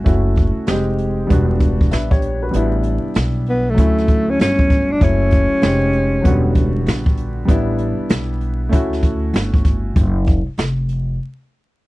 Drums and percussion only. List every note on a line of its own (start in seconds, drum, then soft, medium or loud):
0.06 kick loud
0.06 closed hi-hat medium
0.36 kick medium
0.36 closed hi-hat medium
0.67 snare loud
0.67 closed hi-hat medium
0.98 closed hi-hat medium
1.30 kick medium
1.30 closed hi-hat medium
1.60 kick medium
1.60 closed hi-hat medium
1.81 kick medium
1.91 snare loud
1.91 closed hi-hat medium
2.11 kick loud
2.22 closed hi-hat medium
2.53 closed hi-hat medium
2.83 closed hi-hat medium
3.15 snare loud
3.15 closed hi-hat medium
3.46 open hi-hat soft
3.78 kick medium
3.78 closed hi-hat medium
3.98 snare soft
4.08 kick medium
4.08 closed hi-hat medium
4.39 snare loud
4.39 closed hi-hat medium
4.59 kick loud
4.70 kick medium
4.70 closed hi-hat medium
5.01 kick loud
5.01 closed hi-hat medium
5.31 kick medium
5.31 closed hi-hat medium
5.62 snare loud
5.62 closed hi-hat medium
5.93 closed hi-hat medium
6.25 kick medium
6.25 closed hi-hat medium
6.55 kick medium
6.55 closed hi-hat medium
6.86 snare loud
6.86 closed hi-hat medium
7.06 kick loud
7.17 closed hi-hat medium
7.49 kick loud
7.49 closed hi-hat medium
7.78 closed hi-hat medium
8.09 snare loud
8.09 closed hi-hat medium
8.41 closed hi-hat medium
8.73 kick medium
8.73 closed hi-hat loud
8.93 snare soft
9.03 kick medium
9.03 closed hi-hat medium
9.34 snare loud
9.34 closed hi-hat medium
9.54 kick loud
9.65 kick medium
9.65 closed hi-hat medium
9.96 kick loud
9.96 closed hi-hat medium
10.26 kick loud
10.26 closed hi-hat medium
10.57 snare loud
10.57 closed hi-hat medium
10.89 closed hi-hat medium